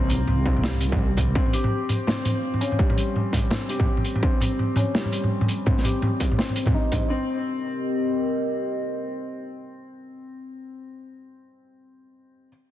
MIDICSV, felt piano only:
0, 0, Header, 1, 2, 480
1, 0, Start_track
1, 0, Tempo, 359281
1, 1808, Time_signature, 4, 2, 24, 8
1, 16981, End_track
2, 0, Start_track
2, 0, Title_t, "Felt piano"
2, 0, Program_c, 0, 0
2, 0, Control_c, 0, 64, 127
2, 0, Note_on_c, 0, 55, 80
2, 0, Note_on_c, 0, 58, 81
2, 0, Note_on_c, 0, 60, 96
2, 588, Note_off_c, 0, 60, 0
2, 609, Note_on_c, 0, 60, 73
2, 829, Note_off_c, 0, 60, 0
2, 849, Note_off_c, 0, 55, 0
2, 849, Note_on_c, 0, 55, 80
2, 1789, Note_off_c, 0, 55, 0
2, 1810, Note_on_c, 0, 60, 80
2, 1828, Control_c, 0, 64, 0
2, 1830, Note_off_c, 0, 58, 0
2, 2029, Note_off_c, 0, 60, 0
2, 2044, Control_c, 0, 64, 127
2, 2052, Note_on_c, 0, 67, 75
2, 2207, Note_off_c, 0, 67, 0
2, 2769, Note_on_c, 0, 60, 100
2, 3469, Note_off_c, 0, 60, 0
2, 3486, Note_on_c, 0, 61, 75
2, 3707, Note_off_c, 0, 61, 0
2, 3726, Note_on_c, 0, 55, 79
2, 4667, Note_off_c, 0, 55, 0
2, 4685, Note_on_c, 0, 60, 80
2, 4907, Note_off_c, 0, 60, 0
2, 4928, Note_on_c, 0, 67, 75
2, 5085, Note_off_c, 0, 67, 0
2, 5648, Note_on_c, 0, 60, 98
2, 6348, Note_off_c, 0, 60, 0
2, 6369, Note_on_c, 0, 61, 73
2, 6589, Note_off_c, 0, 61, 0
2, 6608, Note_on_c, 0, 55, 78
2, 7548, Note_off_c, 0, 55, 0
2, 7566, Note_on_c, 0, 60, 79
2, 7788, Note_off_c, 0, 60, 0
2, 7807, Note_on_c, 0, 67, 69
2, 7964, Note_off_c, 0, 67, 0
2, 8527, Note_on_c, 0, 60, 95
2, 8748, Note_off_c, 0, 60, 0
2, 9005, Note_on_c, 0, 63, 70
2, 9163, Note_off_c, 0, 63, 0
2, 9245, Note_on_c, 0, 60, 71
2, 9466, Note_off_c, 0, 60, 0
2, 9486, Note_on_c, 0, 60, 88
2, 9505, Control_c, 0, 64, 0
2, 9710, Note_off_c, 0, 60, 0
2, 9739, Control_c, 0, 64, 127
2, 16683, Control_c, 0, 64, 0
2, 16981, End_track
0, 0, End_of_file